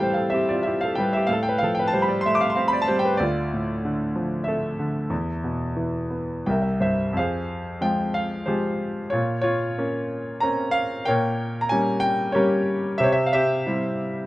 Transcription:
0.00 1.24 A2 soft
0.00 0.92 E3 soft
0.00 0.97 G3 soft
0.00 0.17 A4 soft
0.00 1.00 B4 soft
0.00 0.03 C5 soft
0.00 0.16 C5 medium
0.00 0.14 F5 medium
0.00 0.95 G5 medium
0.00 1.30 A5 medium
0.14 0.31 A4 soft
0.14 0.31 F5 soft
0.30 1.25 C4 soft
0.30 0.45 E5 medium
0.34 0.48 G4 soft
0.49 0.64 F4 soft
0.49 0.65 D5 medium
0.63 1.26 E4 soft
0.63 0.80 E5 medium
0.67 0.80 G4 soft
0.81 0.95 F5 medium
0.85 0.97 A4 medium
0.95 1.28 G3 soft
0.95 1.10 G5 medium
1.00 1.13 B4 medium
1.13 1.29 G4 medium
1.13 1.29 E5 medium
1.27 3.14 A2 medium
1.27 1.43 F5 medium
1.33 1.45 A4 medium
1.43 1.59 G5 medium
1.49 1.61 B4 medium
1.58 2.83 F3 soft
1.58 1.74 F5 medium
1.64 1.76 A4 medium
1.75 1.91 G5 medium
1.79 1.92 B4 medium
1.88 2.04 A5 medium
1.93 2.87 G3 soft
1.93 2.07 C5 medium
2.02 2.21 B5 medium
2.08 2.22 D5 soft
2.21 2.38 C6 medium
2.26 3.17 A3 soft
2.26 2.39 E5 medium
2.35 2.53 D6 medium
2.41 2.54 F5 medium
2.50 2.68 C6 medium
2.55 3.17 C4 medium
2.55 2.69 F5 medium
2.68 2.84 B5 medium
2.73 2.86 D5 medium
2.82 3.00 A5 medium
2.88 3.18 G3 soft
2.88 3.02 C5 medium
2.99 3.17 G5 medium
3.05 3.19 B4 medium
3.17 5.08 D2 medium
3.17 4.50 D5 medium
3.22 4.45 F4 medium
3.53 4.77 A2 soft
3.84 4.78 D3 soft
4.16 5.09 F3 soft
4.44 5.10 A3 soft
4.44 6.48 E5 medium
4.48 6.79 A4 soft
4.79 5.10 D3 soft
5.10 6.42 E2 medium
5.44 6.44 B2 soft
5.76 6.44 E3 soft
6.10 6.45 B3 soft
6.46 7.14 C2 medium
6.46 7.14 A#4 soft
6.46 6.60 E5 soft
6.46 6.63 G5 medium
6.62 6.79 E5 soft
6.80 7.15 G2 soft
6.80 7.13 C5 soft
6.80 7.17 E5 medium
7.13 9.08 F2 soft
7.13 7.86 F5 medium
7.19 8.13 G#4 soft
7.19 8.13 C5 soft
7.81 8.34 F3 soft
7.81 8.34 G#3 soft
7.81 8.35 F4 soft
7.81 8.16 G5 medium
8.14 8.49 F5 medium
8.46 8.99 F3 soft
8.46 9.00 G#3 soft
8.46 9.00 F4 soft
8.46 9.09 G4 soft
8.46 9.09 G#4 soft
8.46 9.08 C5 medium
9.10 11.04 A#2 soft
9.10 9.42 F4 soft
9.10 9.40 C#5 medium
9.41 10.38 F4 medium
9.41 10.44 C#5 medium
9.78 10.30 A#3 soft
9.78 10.30 C#4 soft
10.40 10.94 A#3 soft
10.40 10.94 C4 soft
10.40 10.95 C#4 soft
10.40 10.75 A#5 medium
10.71 11.03 F5 medium
11.05 12.97 A#2 medium
11.05 11.99 A#4 medium
11.05 11.99 C#5 medium
11.05 11.65 G5 medium
11.61 11.69 A#5 medium
11.69 12.22 G3 soft
11.69 12.23 A#3 soft
11.69 12.23 C#4 medium
11.69 12.03 G#5 medium
12.00 12.35 G5 medium
12.32 12.87 G3 soft
12.32 12.88 A#3 soft
12.32 12.96 G4 medium
12.32 12.96 A#4 medium
12.32 13.01 C#5 medium
12.37 12.88 C#4 medium
12.98 14.26 C3 medium
12.98 13.33 G4 medium
12.98 13.33 C5 medium
12.98 13.06 E5 medium
13.04 13.12 C#5 medium
13.12 13.31 E5 medium
13.26 13.33 F5 medium
13.33 14.26 G4 medium
13.33 14.26 C5 medium
13.33 14.26 E5 medium
13.67 14.21 G3 soft
13.67 14.22 C4 soft
13.67 14.22 E4 soft

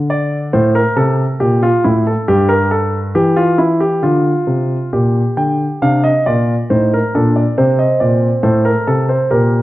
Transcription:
0.00 0.50 D3 medium
0.10 0.37 D5 medium
0.53 0.80 A2 medium
0.53 0.74 C5 medium
0.75 0.96 A#4 medium
0.96 1.23 C3 medium
0.96 1.23 A4 medium
1.40 1.67 A#2 medium
1.40 1.61 G4 medium
1.63 1.83 F4 medium
1.84 2.11 A2 medium
1.84 2.05 E4 medium
2.07 2.27 A4 medium
2.28 3.12 G2 medium
2.28 2.48 G4 medium
2.49 2.70 A#4 medium
2.71 2.98 A4 medium
3.15 4.01 E3 medium
3.15 3.36 G4 medium
3.36 3.58 F4 medium
3.58 3.80 E4 medium
3.80 4.02 G4 medium
4.03 4.30 D3 medium
4.03 4.89 F4 medium
4.47 4.75 C3 medium
4.93 5.20 A#2 medium
4.93 5.78 G4 medium
5.37 5.64 D3 medium
5.37 5.64 G5 medium
5.82 6.09 C3 medium
5.82 6.09 D4 medium
5.82 6.03 F5 medium
6.04 6.25 D#5 medium
6.26 6.54 A#2 medium
6.26 6.54 F4 medium
6.26 6.54 D5 medium
6.70 6.97 A2 medium
6.70 6.97 D#4 medium
6.70 6.91 C5 medium
6.94 7.14 A#4 medium
7.15 7.42 A#2 medium
7.15 7.42 D4 medium
7.15 7.36 A4 medium
7.36 7.57 D5 medium
7.58 7.85 C3 medium
7.58 8.41 C4 medium
7.58 7.78 C5 medium
7.79 8.00 D#5 medium
8.00 8.28 A#2 medium
8.00 8.27 D5 medium
8.43 8.70 A2 medium
8.43 8.86 A4 medium
8.43 8.64 C5 medium
8.65 8.86 A#4 medium
8.87 9.14 C3 medium
8.87 9.08 A4 medium
9.09 9.30 C5 medium
9.30 9.57 A#2 medium
9.30 9.57 G4 medium
9.30 9.62 A#4 medium

